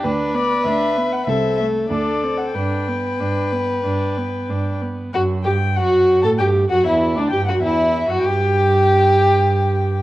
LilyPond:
<<
  \new Staff \with { instrumentName = "Violin" } { \time 4/4 \key g \major \tempo 4 = 96 r8 d''8 e''8. fis''16 e''8 e''8 d''8. fis''16 | g''2.~ g''8 r8 | \key e \dorian fis''8 g''8 fis''8. a''16 g''8 fis''16 e''8 d''16 g''16 fis''16 | e''8. fis''16 g''2. | }
  \new Staff \with { instrumentName = "Violin" } { \time 4/4 \key g \major b'2 a'4 a'4 | b'2.~ b'8 r8 | \key e \dorian fis'8 g'8 fis'8. a'16 g'8 fis'16 e'8 d'16 g'16 fis'16 | e'8. fis'16 g'2. | }
  \new Staff \with { instrumentName = "Viola" } { \time 4/4 \key g \major d'8 b8 d'8 b8 c'8 a8 d'8 c'8 | d'8 b8 d'8 b8 d'8 b8 d'8 b8 | \key e \dorian fis'8 g'8 fis'8. a'16 g'8 fis'16 e'8 d'16 g'16 fis'16 | e'8. fis'16 g'2. | }
  \new Staff \with { instrumentName = "Cello" } { \clef bass \time 4/4 \key g \major d,4 d,4 c,4 d,4 | g,4 g,4 g,4 g,4 | \key e \dorian fis,8 g,8 fis,8. a,16 g,8 fis,16 e,8 d,16 g,16 fis,16 | e,8. fis,16 g,2. | }
>>